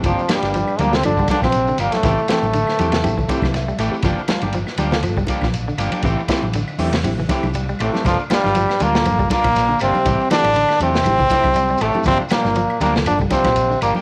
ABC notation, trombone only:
X:1
M:4/4
L:1/16
Q:"Swing 16ths" 1/4=120
K:Gdor
V:1 name="Trombone"
F,2 G,4 B, C D2 D C3 B, A,- | A,2 A,12 z2 | z16 | z12 z2 A,2 |
F,2 G,4 B,4 B,4 C2- | C2 D4 C8 A,2 | C2 B,4 B,2 D2 C4 B,2 |]